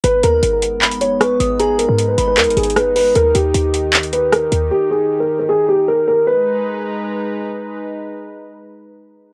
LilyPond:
<<
  \new Staff \with { instrumentName = "Synth bell" } { \time 4/4 \key gis \minor \tempo 4 = 154 r8 ais''8 r4 b''4 cis'''8 dis'''8 | ais''4. b''8 r2 | r1 | r1 |
r1 | r1 | }
  \new Staff \with { instrumentName = "Grand piano" } { \time 4/4 \key gis \minor b'8 ais'2 cis''8 b'4 | gis'8 ais'8. b'8 b'16 ais'8 gis'8 b'8 b'8 | ais'8 g'2 b'8 ais'4 | g'8 gis'8. ais'8 ais'16 gis'8 g'8 ais'8 ais'8 |
b'2. r4 | r1 | }
  \new Staff \with { instrumentName = "Analog synth pad" } { \time 4/4 \key gis \minor << { <gis b>1~ | <gis b>1 | <dis g'>1~ | <dis g'>1 |
<gis dis' b' ais''>1~ | <gis dis' b' ais''>1 | } \\ { dis'1~ | dis'1~ | dis'1~ | dis'1 |
r1 | r1 | } >> }
  \new Staff \with { instrumentName = "808-style bass" } { \clef bass \time 4/4 \key gis \minor gis,,8 dis,8 gis,,4~ gis,,16 g,,8~ g,,32 gis,,8~ gis,,32 gis,,8~ | gis,,8. gis,8. gis,,8 dis,16 gis,,16 gis,,4. | dis,8 dis,8 dis,2~ dis,8 dis,8 | r1 |
r1 | r1 | }
  \new DrumStaff \with { instrumentName = "Drums" } \drummode { \time 4/4 hh8 hh8 hh8 hh8 <hc hh>16 hh16 hh8 <hh ss>8 hh8 | hh8 hh8 hh8 hh8 \tuplet 3/2 { <hc hh>16 hh16 hh16 hh16 hh16 hh16 } <hh ss>8 hho8 | hh8 hh8 hh8 hh8 <hc hh>16 hh16 hh8 <hh ss>8 hh8 | r4 r4 r4 r4 |
r4 r4 r4 r4 | r4 r4 r4 r4 | }
>>